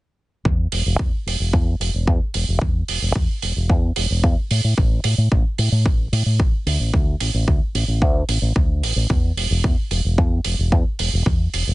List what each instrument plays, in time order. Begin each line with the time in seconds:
0.45 fingered electric bass E2, kick
0.72 fingered electric bass E1, open hi-hat
0.86 fingered electric bass E1
0.99 kick
1.26 fingered electric bass E1, open hi-hat
1.40 fingered electric bass E1
1.53 fingered electric bass E2, kick
1.80 fingered electric bass E1, open hi-hat
1.94 fingered electric bass E1
2.07 fingered electric bass E2, kick
2.34 fingered electric bass E1, open hi-hat
2.48 fingered electric bass E1
2.62 fingered electric bass E2, kick
2.88 fingered electric bass E1, open hi-hat
3.02 fingered electric bass E1
3.15 fingered electric bass E2, kick
3.42 fingered electric bass E1, open hi-hat
3.56 fingered electric bass E1
3.70 fingered electric bass E2, kick
3.96 fingered electric bass E1, open hi-hat
4.10 fingered electric bass E1
4.24 fingered electric bass E2, kick
4.51 fingered electric bass A2, open hi-hat
4.64 fingered electric bass A2
4.78 fingered electric bass A1, kick
5.04 fingered electric bass A2, open hi-hat
5.18 fingered electric bass A2
5.32 fingered electric bass A1, kick
5.58 fingered electric bass A2, open hi-hat
5.72 fingered electric bass A2
5.86 fingered electric bass A1, kick
6.12 fingered electric bass A2, open hi-hat
6.26 fingered electric bass A2
6.40 fingered electric bass A1, kick
6.66 fingered electric bass D2, open hi-hat
6.80 fingered electric bass A1
6.94 fingered electric bass D2, kick
7.20 fingered electric bass A1, open hi-hat
7.34 fingered electric bass A1
7.48 fingered electric bass D2, kick
7.75 fingered electric bass A1, open hi-hat
7.88 fingered electric bass A1
8.02 fingered electric bass D2, kick
8.29 fingered electric bass A1, open hi-hat
8.42 fingered electric bass A1
8.56 fingered electric bass D2, kick
8.83 fingered electric bass A1, open hi-hat
8.96 fingered electric bass A1
9.10 fingered electric bass E2, kick
9.37 fingered electric bass E1, open hi-hat
9.50 fingered electric bass E1
9.64 fingered electric bass E2, kick
9.91 fingered electric bass E1, open hi-hat
10.04 fingered electric bass E1
10.18 fingered electric bass E2, kick
10.45 fingered electric bass E1, open hi-hat
10.59 fingered electric bass E1
10.72 fingered electric bass E2, kick
10.99 fingered electric bass E1, open hi-hat
11.13 fingered electric bass E1
11.26 fingered electric bass E2, kick
11.53 fingered electric bass E1, open hi-hat
11.67 fingered electric bass E1